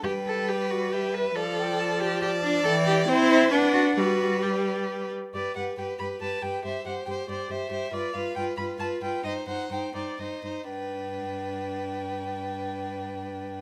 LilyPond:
<<
  \new Staff \with { instrumentName = "Violin" } { \time 3/4 \key g \major \tempo 4 = 135 g''4 d''4 e''4 | f''8 g''8 a''8 a''4. | g''4 g''8 e''8 fis''4 | d''2~ d''8 r8 |
d''8 fis''8 g''8 b''8 a''8 g''8 | e''8 fis''8 g''8 d''8 e''4 | d''8 f''8 g''8 b''8 a''8 g''8 | ees''8 fis''8 g''8 d''8 ees''4 |
g''2.~ | g''2. | }
  \new Staff \with { instrumentName = "Violin" } { \time 3/4 \key g \major b'2. | d''2 d''4~ | d''4 c''4 b'4 | b'2~ b'8 r8 |
b'8 b'8 b'8 b'8 b'8 b'8 | c''8 c''8 c''8 c''8 c''8 c''8 | b'8 b'8 b'8 b'8 b'8 b'8 | c''8 c''8 c''8 c''8 c''8 c''8 |
b'2.~ | b'2. | }
  \new Staff \with { instrumentName = "Viola" } { \time 3/4 \key g \major g2. | f2. | e4 c'4 d'4 | g2~ g8 r8 |
g'8 g'8 g'8 g'8 g'8 g'8 | g'8 g'8 g'8 g'8 g'8 g'8 | f'8 f'8 f'8 f'8 f'8 f'8 | ees'8 ees'8 ees'8 ees'8 ees'8 ees'8 |
d'2.~ | d'2. | }
  \new Staff \with { instrumentName = "Cello" } { \clef bass \time 3/4 \key g \major g'8 a'8 g'8 fis'8 g'8 b'8 | a'4. g'8 g'8 d'8 | a'8 g'8 e'4 d'8 fis'8 | fis'4 g'4. r8 |
g,8 g,8 g,8 g,8 g,8 g,8 | g,8 g,8 g,8 g,8 g,8 g,8 | g,8 g,8 g,8 g,8 g,8 g,8 | g,8 g,8 g,8 g,8 g,8 g,8 |
g,2.~ | g,2. | }
>>